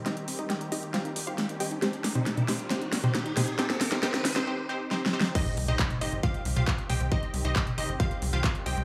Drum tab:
CC |------------------------------------------------|------------------------------------------------|------------------------------------------------|x-----------------------------------------------|
HH |x--x--o--x--x--x--o--x--x--x--o-----x--x--o--x--|x--x--o--x--x--x--o--x--x--x--o--x--x--x--o--x--|x--x--o--x--x--x--o--x--------------------------|x--x--o--x--x--x--o--x--x--x--o--x--x--x--o--x--|
CP |------------------------------------------------|------------------------------------------------|------------------------------------------------|------------x-----------------------x-----------|
SD |o-----------o-----------o-----------o-----------|o-----o-----o-----o-----o-----o-----o-----o-----|o--o--o--o--o--o--o--o--------------o---o---o---|------------------------------------------------|
T2 |------------------------------------------------|---------o-----o-----------------o--------o-----|------------------------------------------------|---------o-----o-----------------o--------o-----|
BD |------------------------------------------------|------------------------------------------------|------------------------------------------------|o-----------o-----------o-----------o-----------|

CC |------------------------------------------------|
HH |x--x--o--x--x--x--o--x--x--x--o--x--x--x--o--x--|
CP |------------x-----------------------x-----------|
SD |------------------------------------------------|
T2 |---------------o--------------------------------|
BD |o-----------o-----------o-----------o-----------|